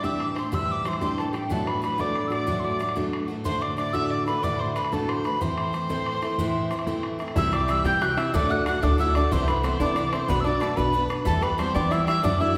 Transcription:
Already playing: A2 E3
0.03 C3 E3 G3 D4 G4 E5 E6, bodhran
0.20 D6, bodhran
0.36 G3 D4 G4 C5 C6, bodhran
0.52 C3 E3 G3 D4 G4 E5 E6, bodhran
0.69 D6, bodhran
0.85 E3 G3 D4 G4 C5 C6, bodhran
0.93 bodhran
1.01 C3 E3 G3 D4 G4 C5 C6, bodhran
1.18 A4 A5, bodhran
1.33 G3 D4 G4 G5, bodhran
1.50 B2 F#3 A3 D4 F#4 A4 A5, bodhran
1.59 bodhran
1.67 B4 B5, bodhran
1.78 F#3 B4
1.83 A3 D4 F#4 B5, bodhran
1.89 B4
1.98 B2 F#3 A3 D4 F#4 D5 D6, bodhran
2.15 bodhran
2.28 F#4 E6
2.32 A3 D4 D5 D6, bodhran
2.47 B2 F#3 A3 D4 F#4, bodhran
2.60 C6
2.64 D5 D6, bodhran
2.79 F#3 A3 D4 F#4, bodhran
2.89 bodhran
2.96 B2 F#3 A3 D4 F#4, bodhran
3.13 bodhran
3.28 A3 D4 F#4
3.44 D2 A2 D3 A3 D4 F#4 C5 C6, bodhran
3.54 bodhran
3.62 D5 D6, bodhran
3.77 D3 A3 D4 F#4 D5 D6, bodhran
3.93 D2 A2 D3 A3 D4 F#4 E5 E6, bodhran
4.10 D5 D6
4.26 D3 A3 D4 F#4 B4 B5, bodhran
4.43 D2 A2 D3 A3 D4 F#4 D5 D6, bodhran
4.59 C5 C6, bodhran
4.75 D3 A3 D4 F#4 B4 B5, bodhran
4.85 bodhran
4.92 D2 A2 D3 A3 D4 F#4 A4 A5, bodhran
5.09 C5 C6, bodhran
5.24 D3 A3 D4 F#4 B4 B5, bodhran
5.41 A2 E3 A3 C4 E4 C5 C6, bodhran
5.49 bodhran
5.58 bodhran
5.73 E3 A3 C4 E4, bodhran
5.89 A2 E3 A3 C4 E4, bodhran
6.06 bodhran
6.22 A3 C4 E4, bodhran
6.38 A2 E3 A3 C4 E4, bodhran
6.55 bodhran
6.71 E3 A3 C4 E4, bodhran
6.79 bodhran
6.87 A2 E3 A3 C4 E4, bodhran
7.03 bodhran
7.19 A3 C4 E4, bodhran
7.28 bodhran
7.36 C2 C3 E3 G3 C4 E4 G4 E5 E6, bodhran
7.52 G3 C4 G4 D5 D6, bodhran
7.68 E3 G3 C4 G4 E5 E6, bodhran
7.84 C3 E3 G3 C4 G4 G5 G6, bodhran
8.01 E3 G3 C4 F#4 G4 F#6, bodhran
8.17 G3 C4 E4 G4 E5 E6, bodhran
8.30 D2 E6
8.34 D2 A2 D3 A3 D4 F#4 D5 D6, bodhran
8.49 D3 A3 D4 F#4 F#5 F#6, bodhran
8.66 D3 A3 D4 F#4 F#5 F#6, bodhran
8.82 D2 A2 D3 A3 D4 F#4 D5 D6, bodhran
8.98 D3 A3 D4 E4 F#4 E5 E6
9.15 D3 A3 D4 F#4 D5 D6, bodhran
9.31 C2 C3 E3 A3 B3 C4 E4 C5 C6, bodhran
9.47 A3 B3 E4 B4 B5, bodhran
9.63 E3 A3 B3 C4 E4 C5 C6, bodhran
9.80 C3 E3 A3 B3 D4 E4 D5 D6, bodhran
9.96 E3 A3 B3 E4, bodhran
10.09 C4 E4 B4 C5, bodhran
10.13 A3 B3 C6
10.28 B1 B3 D4 F#4 B4 B5, bodhran
10.40 D4 E6
10.44 D4 F#4 B4 D5 D6, bodhran
10.60 A3 B3 D4 F#4 B4 A5, bodhran
10.77 B1 B3 D4 F#4 B4 B5, bodhran
10.93 B3 D4 F#4 B4, bodhran
11.09 D4 F#4 B4, bodhran
11.25 E2 E3 G3 A3 B3 G4 A4 A5, bodhran
11.41 G3 B3 G4 B4 B5, bodhran
11.58 E3 G3 B3 C4 G4 C5 C6, bodhran
11.74 E3 G3 B3 D4 G4 D5 D6, bodhran
11.90 E3 G3 B3 E4 G4 E5 E6, bodhran
12.06 G3 B3 E4 G4 E5 E6, bodhran
12.23 F#2 F#3 A3 D4 F#4 D5 D6, bodhran
12.40 A3 D4 E4 F#4 E5 E6, bodhran

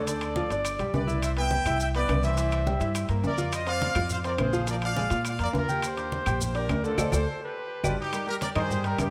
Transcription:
Already playing: D2 A4 D5
0.07 D3 D4 D5, high conga, high timbale, maracas
0.21 high conga, high timbale, claves, maracas
0.36 F3 F4 F5, high conga, low timbale, maracas
0.50 G1 D4 D5 D6, high conga, high timbale, maracas
0.65 high conga, high timbale, claves, maracas
0.79 B1 G3 G4 G5, high conga, high timbale, maracas
0.93 C2 B4 D5, high conga, low timbale, maracas
1.07 E4 E5 E6, high conga, maracas
1.22 C5 E5, high conga, high timbale, claves, maracas
1.37 B3 B4 E5 G5 B5, high conga, high timbale, maracas
1.51 high conga, low timbale, maracas
1.65 C2 E4 E5 E6, low conga, high timbale, claves, maracas
1.80 E5 G5, high conga, maracas
1.95 B3 B4 D5 B5, high conga, high timbale, maracas
2.08 C2, high conga, high timbale, low timbale, claves, maracas
2.23 E3 E4 C5 E5, maracas
2.37 E3 E4 E5, high timbale, maracas
2.52 high conga, high timbale, claves, maracas
2.67 G3 G4 G5, high conga, low timbale, maracas
2.80 G2 E4 E5 E6, high conga, high timbale, maracas
2.95 high conga, high timbale, claves, maracas
3.09 G2 A#3 A#4 A#5, high conga, high timbale, maracas
3.23 F2 A#4 D5, high conga, low timbale, maracas
3.38 F4 F5 F6, high conga, maracas
3.52 C5 D#5, high conga, high timbale, claves, maracas
3.67 C4 C5 D5 F5 C6, high conga, high timbale, maracas
3.81 high conga, low timbale, maracas
3.95 F2 F4 F5 F6, low conga, high timbale, claves, maracas
4.10 C5 F5, high conga, low conga, maracas
4.24 C4 A#4 C5 D5 C6, high conga, high timbale, maracas
4.38 A#1, high conga, high timbale, low timbale, claves, maracas
4.42 G#4 C5
4.53 F3 F4 F5, high conga, maracas
4.67 F3 F4 A#4 D5 F5, high conga, high timbale, maracas
4.82 D5 F5, high conga, high timbale, claves, maracas
4.96 G#3 G#4 G#5, high conga, low timbale, maracas
5.10 A#2 F4 F5 F6, high conga, high timbale, maracas
5.25 D5, high conga, high timbale, claves, maracas
5.29 F5
5.39 F2 A#3 A#4 A#5, high conga, high timbale, maracas
5.43 A#4 D5
5.53 D#2, high conga, low timbale, maracas
5.57 F4 A#4
5.68 G4 G5 G6, high conga, maracas
5.82 G4, high conga, high timbale, claves, maracas
5.86 C5
5.97 D4 D5 D6, high conga, high timbale, maracas
6.12 high conga, low timbale, maracas
6.26 A#1 G4 G5 G6, low conga, high timbale, claves, maracas
6.41 G4 C5, high conga, low conga, maracas
6.55 D4 G4 A#4 D5 D6, high timbale, maracas
6.69 D2, high conga, high timbale, low timbale, claves, maracas
6.83 D3 D4 F4 A4 D5, maracas
6.98 D2 A4 C5 D5, high conga, high timbale, claves, maracas
7.12 D2 A4 C5 D5, high conga, high timbale, claves, maracas
7.44 G4 B4
7.83 G1 D4 F4 G4 B4 D5, high conga, high timbale, claves, maracas
8.00 D#4 G4
8.12 G3 G4 A#4, high conga, high timbale, claves, maracas
8.27 G3 G4 A#4, high conga, maracas
8.41 A#4 D5, high conga, high timbale, low timbale, maracas
8.55 G2 D#3 D#4 G#4 C5 D#5, high conga, low conga, high timbale, claves, maracas
8.70 G3 G4 A#4, high conga, low conga, maracas
8.84 G3 G4 A#4, high conga, high timbale, maracas
8.98 G2 D#4 G4, high conga, high timbale, low timbale, claves, maracas

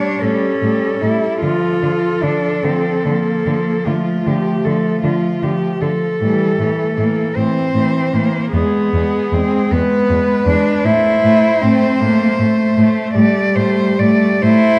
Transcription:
Already playing: G3 D4 C#5
0.21 A2 G3 C#4 A4
0.62 A2 G3
1.02 A2 G3 E4
1.42 D3 F3 F4 A4
1.83 D3 F3
2.23 D3 F3 D4
2.64 D3 F3 C4
3.05 D3 F3 A#3
3.46 D3 F3
3.86 D3 F3 A3 F4
4.26 D3 F3 G4
4.64 D3 F3 A4
5.03 D3 F3 F4
5.43 D3 F3 G4
5.81 D3 F3 A4
6.20 A2 E3 G3
6.58 A2 E3 A3
6.97 A2 E3 A#3
7.35 A2 E3 C4 C5
7.74 A2 E3
8.13 A2 E3 A#3
8.53 E2 G#3 B3 G#4
8.93 E2 G#3
9.33 E2 G#3 C4
9.71 E2 G#3 B3 B4
10.09 E2 G#3
10.47 E2 G#3 D4
10.85 A2 A3 E4 C5
11.24 A2 A3
11.62 A2 A3 C4
12.01 A2 A3 A#3
12.38 A2 A3
12.77 A2 A3
13.14 A2 G3 A3 D5
13.55 A2 A3 C5
13.99 A2 A3 D5
14.42 A2 A3 E4 C5

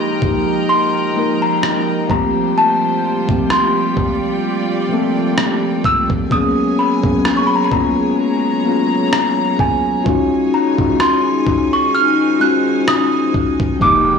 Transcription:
Already playing: F3 G#3 A#3 D#4 G4 A#4 D#5 G5 A#5 C6
0.20 F3 G#3 A#3 D#4, kick
0.25 G4
0.69 C6
1.14 F3 G#3 A#3 D#4
1.19 A#4
1.42 A#5
1.63 cross-stick
2.08 F3 G3 A3 A#3 C4 F4 G4 C5 G5 A#5, kick
2.13 G4
2.58 A5
3.27 F3 A3 A#3 C4, kick
3.32 G4
3.50 C6, cross-stick
3.97 D5, kick
4.89 F3 A3 A#3 C4
4.94 A4
5.38 cross-stick
5.84 E6, kick
6.10 kick
6.30 F#3 G#3 A#3 B3 C#4 G#4 C#5 G#5 D#6, kick
6.35 G#4
6.79 B5
7.02 F#3 A#3 B3 C#4, kick
7.07 G#4
7.25 cross-stick
7.37 C#6
7.47 B5
7.56 A#5
7.64 B5
7.70 F#3 A#3 B3 C#4 A#5, kick
7.75 F4
8.18 A#5
8.63 F#3 A#3 B3 C#4
8.68 F4
9.13 A#5, cross-stick
9.59 G#5, kick
10.04 D#3 G#3 C#4 D#4 F4 G#4 G#5, kick
10.09 F#4
10.54 A#5
10.77 G#3 C#4 D#4 F4, kick
10.82 F#4
11.00 C6, cross-stick
11.47 kick
11.73 C#6
11.94 C5 F6
12.39 G#3 C#4 D#4 F4 F#6
12.44 F#4
12.88 D#6, cross-stick
13.34 kick
13.60 kick
13.80 F1 F3 G#3 A#3 D#4 G5 D6, kick
13.85 G4

